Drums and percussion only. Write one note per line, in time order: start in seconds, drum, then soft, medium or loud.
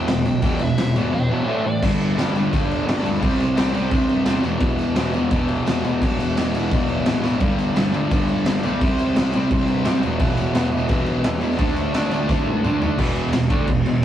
0.08 snare loud
0.08 tambourine medium
0.08 crash medium
0.25 tambourine medium
0.25 crash medium
0.42 kick loud
0.42 tambourine medium
0.42 crash loud
0.59 tambourine medium
0.59 crash medium
0.78 snare loud
0.78 tambourine medium
0.78 crash medium
0.95 tambourine medium
0.95 crash medium
1.83 kick loud
1.83 crash loud
1.83 crash medium
2.00 tambourine medium
2.00 crash medium
2.17 snare loud
2.17 tambourine loud
2.17 crash medium
2.35 tambourine medium
2.35 crash medium
2.53 kick loud
2.53 tambourine medium
2.53 crash medium
2.71 crash medium
2.88 snare loud
2.88 tambourine medium
2.88 crash medium
3.05 tambourine medium
3.05 crash medium
3.15 snare soft
3.23 kick loud
3.23 crash medium
3.33 snare soft
3.40 tambourine medium
3.40 crash medium
3.57 snare loud
3.57 tambourine medium
3.57 crash loud
3.74 tambourine medium
3.74 crash medium
3.91 kick loud
3.91 tambourine medium
3.91 crash medium
4.09 crash medium
4.25 snare loud
4.25 tambourine loud
4.25 crash medium
4.44 tambourine medium
4.44 crash medium
4.60 kick loud
4.60 crash medium
4.79 tambourine medium
4.79 crash medium
4.96 snare loud
4.96 tambourine loud
4.96 crash medium
5.13 tambourine medium
5.13 crash medium
5.31 kick loud
5.31 tambourine medium
5.31 crash medium
5.49 crash medium
5.66 snare loud
5.66 tambourine loud
5.66 crash medium
5.84 tambourine medium
5.84 crash medium
6.02 kick loud
6.02 tambourine soft
6.02 crash loud
6.20 tambourine medium
6.20 crash medium
6.37 snare loud
6.37 tambourine loud
6.37 crash medium
6.54 tambourine medium
6.54 crash medium
6.72 kick loud
6.72 tambourine medium
6.72 crash medium
6.89 crash medium
7.06 snare loud
7.06 tambourine loud
7.06 crash medium
7.24 snare medium
7.24 tambourine medium
7.40 kick loud
7.40 crash medium
7.59 tambourine medium
7.59 crash medium
7.76 snare loud
7.76 tambourine medium
7.76 crash medium
7.92 tambourine medium
7.92 crash medium
8.10 kick loud
8.10 tambourine medium
8.10 crash medium
8.29 crash medium
8.45 snare loud
8.45 tambourine loud
8.45 crash medium
8.63 tambourine medium
8.63 crash medium
8.81 kick loud
8.81 crash medium
8.97 tambourine medium
8.97 crash medium
9.15 snare loud
9.15 tambourine loud
9.15 crash medium
9.33 tambourine medium
9.33 crash medium
9.50 kick loud
9.50 tambourine medium
9.50 crash medium
9.68 crash medium
9.85 snare loud
9.85 tambourine loud
9.85 crash medium
10.03 tambourine medium
10.03 crash medium
10.19 kick loud
10.19 crash medium
10.29 snare soft
10.37 tambourine medium
10.37 crash medium
10.54 snare loud
10.54 tambourine loud
10.54 crash medium
10.72 tambourine medium
10.72 crash medium
10.89 kick loud
10.89 tambourine medium
10.89 crash medium
11.06 crash medium
11.24 snare loud
11.24 tambourine loud
11.24 crash medium
11.34 tambourine soft
11.41 tambourine medium
11.41 crash medium
11.51 snare soft
11.58 kick loud
11.58 tambourine soft
11.58 crash medium
11.68 snare soft
11.68 tambourine soft
11.76 tambourine medium
11.76 crash medium
11.94 snare loud
11.94 tambourine loud
11.94 crash medium
12.11 tambourine medium
12.11 crash medium
12.29 kick loud
12.29 snare medium
12.29 tambourine medium
12.46 high tom medium
12.56 tambourine soft
12.64 mid tom loud
12.64 tambourine loud
12.73 tambourine soft
12.82 floor tom medium
12.82 tambourine medium
12.99 kick loud
12.99 crash loud
13.16 ride medium
13.33 snare loud
13.33 ride loud
13.50 kick loud
13.50 ride medium
13.67 kick loud
13.67 ride loud
13.86 ride medium